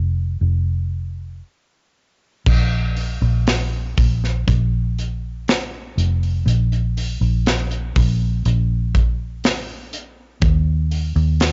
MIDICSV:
0, 0, Header, 1, 3, 480
1, 0, Start_track
1, 0, Tempo, 1011804
1, 1168, Time_signature, 4, 2, 24, 8
1, 2597, Tempo, 988468
1, 5533, End_track
2, 0, Start_track
2, 0, Title_t, "Fingered electric bass"
2, 0, Program_c, 0, 33
2, 0, Note_on_c, 0, 29, 65
2, 180, Note_off_c, 0, 29, 0
2, 195, Note_on_c, 0, 29, 70
2, 665, Note_off_c, 0, 29, 0
2, 1170, Note_on_c, 0, 34, 95
2, 1508, Note_off_c, 0, 34, 0
2, 1526, Note_on_c, 0, 34, 93
2, 1866, Note_off_c, 0, 34, 0
2, 1886, Note_on_c, 0, 34, 87
2, 2107, Note_off_c, 0, 34, 0
2, 2122, Note_on_c, 0, 34, 102
2, 2820, Note_off_c, 0, 34, 0
2, 2839, Note_on_c, 0, 29, 93
2, 3065, Note_off_c, 0, 29, 0
2, 3074, Note_on_c, 0, 34, 117
2, 3421, Note_off_c, 0, 34, 0
2, 3439, Note_on_c, 0, 34, 91
2, 3783, Note_off_c, 0, 34, 0
2, 3804, Note_on_c, 0, 34, 106
2, 4029, Note_off_c, 0, 34, 0
2, 4044, Note_on_c, 0, 34, 101
2, 4982, Note_off_c, 0, 34, 0
2, 4998, Note_on_c, 0, 39, 124
2, 5338, Note_off_c, 0, 39, 0
2, 5357, Note_on_c, 0, 39, 104
2, 5533, Note_off_c, 0, 39, 0
2, 5533, End_track
3, 0, Start_track
3, 0, Title_t, "Drums"
3, 1169, Note_on_c, 9, 36, 104
3, 1170, Note_on_c, 9, 49, 88
3, 1216, Note_off_c, 9, 36, 0
3, 1218, Note_off_c, 9, 49, 0
3, 1405, Note_on_c, 9, 44, 55
3, 1407, Note_on_c, 9, 46, 67
3, 1453, Note_off_c, 9, 44, 0
3, 1455, Note_off_c, 9, 46, 0
3, 1645, Note_on_c, 9, 44, 56
3, 1646, Note_on_c, 9, 46, 86
3, 1650, Note_on_c, 9, 38, 108
3, 1692, Note_off_c, 9, 44, 0
3, 1694, Note_off_c, 9, 46, 0
3, 1697, Note_off_c, 9, 38, 0
3, 1885, Note_on_c, 9, 44, 67
3, 1887, Note_on_c, 9, 36, 98
3, 1887, Note_on_c, 9, 46, 60
3, 1932, Note_off_c, 9, 44, 0
3, 1934, Note_off_c, 9, 36, 0
3, 1935, Note_off_c, 9, 46, 0
3, 2011, Note_on_c, 9, 38, 34
3, 2058, Note_off_c, 9, 38, 0
3, 2124, Note_on_c, 9, 36, 88
3, 2127, Note_on_c, 9, 44, 63
3, 2127, Note_on_c, 9, 46, 85
3, 2171, Note_off_c, 9, 36, 0
3, 2174, Note_off_c, 9, 44, 0
3, 2174, Note_off_c, 9, 46, 0
3, 2365, Note_on_c, 9, 46, 67
3, 2366, Note_on_c, 9, 44, 60
3, 2413, Note_off_c, 9, 46, 0
3, 2414, Note_off_c, 9, 44, 0
3, 2600, Note_on_c, 9, 44, 60
3, 2600, Note_on_c, 9, 46, 81
3, 2606, Note_on_c, 9, 38, 108
3, 2648, Note_off_c, 9, 44, 0
3, 2649, Note_off_c, 9, 46, 0
3, 2654, Note_off_c, 9, 38, 0
3, 2843, Note_on_c, 9, 44, 63
3, 2843, Note_on_c, 9, 46, 67
3, 2892, Note_off_c, 9, 44, 0
3, 2892, Note_off_c, 9, 46, 0
3, 2964, Note_on_c, 9, 46, 50
3, 3013, Note_off_c, 9, 46, 0
3, 3084, Note_on_c, 9, 44, 62
3, 3084, Note_on_c, 9, 46, 90
3, 3133, Note_off_c, 9, 44, 0
3, 3133, Note_off_c, 9, 46, 0
3, 3202, Note_on_c, 9, 44, 56
3, 3250, Note_off_c, 9, 44, 0
3, 3323, Note_on_c, 9, 44, 63
3, 3326, Note_on_c, 9, 46, 73
3, 3372, Note_off_c, 9, 44, 0
3, 3374, Note_off_c, 9, 46, 0
3, 3446, Note_on_c, 9, 46, 39
3, 3495, Note_off_c, 9, 46, 0
3, 3561, Note_on_c, 9, 44, 60
3, 3563, Note_on_c, 9, 46, 88
3, 3567, Note_on_c, 9, 38, 104
3, 3610, Note_off_c, 9, 44, 0
3, 3612, Note_off_c, 9, 46, 0
3, 3615, Note_off_c, 9, 38, 0
3, 3681, Note_on_c, 9, 44, 66
3, 3730, Note_off_c, 9, 44, 0
3, 3801, Note_on_c, 9, 44, 67
3, 3804, Note_on_c, 9, 46, 77
3, 3805, Note_on_c, 9, 36, 98
3, 3850, Note_off_c, 9, 44, 0
3, 3853, Note_off_c, 9, 36, 0
3, 3853, Note_off_c, 9, 46, 0
3, 4044, Note_on_c, 9, 44, 66
3, 4044, Note_on_c, 9, 46, 88
3, 4092, Note_off_c, 9, 46, 0
3, 4093, Note_off_c, 9, 44, 0
3, 4283, Note_on_c, 9, 36, 80
3, 4283, Note_on_c, 9, 46, 69
3, 4284, Note_on_c, 9, 44, 61
3, 4332, Note_off_c, 9, 36, 0
3, 4332, Note_off_c, 9, 46, 0
3, 4333, Note_off_c, 9, 44, 0
3, 4522, Note_on_c, 9, 44, 65
3, 4523, Note_on_c, 9, 46, 96
3, 4528, Note_on_c, 9, 38, 124
3, 4571, Note_off_c, 9, 44, 0
3, 4571, Note_off_c, 9, 46, 0
3, 4577, Note_off_c, 9, 38, 0
3, 4761, Note_on_c, 9, 44, 63
3, 4761, Note_on_c, 9, 46, 72
3, 4809, Note_off_c, 9, 44, 0
3, 4809, Note_off_c, 9, 46, 0
3, 4997, Note_on_c, 9, 44, 65
3, 4997, Note_on_c, 9, 46, 88
3, 4999, Note_on_c, 9, 36, 112
3, 5045, Note_off_c, 9, 44, 0
3, 5045, Note_off_c, 9, 46, 0
3, 5047, Note_off_c, 9, 36, 0
3, 5237, Note_on_c, 9, 44, 55
3, 5239, Note_on_c, 9, 46, 67
3, 5286, Note_off_c, 9, 44, 0
3, 5288, Note_off_c, 9, 46, 0
3, 5359, Note_on_c, 9, 46, 41
3, 5408, Note_off_c, 9, 46, 0
3, 5474, Note_on_c, 9, 44, 63
3, 5475, Note_on_c, 9, 46, 94
3, 5479, Note_on_c, 9, 38, 118
3, 5522, Note_off_c, 9, 44, 0
3, 5524, Note_off_c, 9, 46, 0
3, 5528, Note_off_c, 9, 38, 0
3, 5533, End_track
0, 0, End_of_file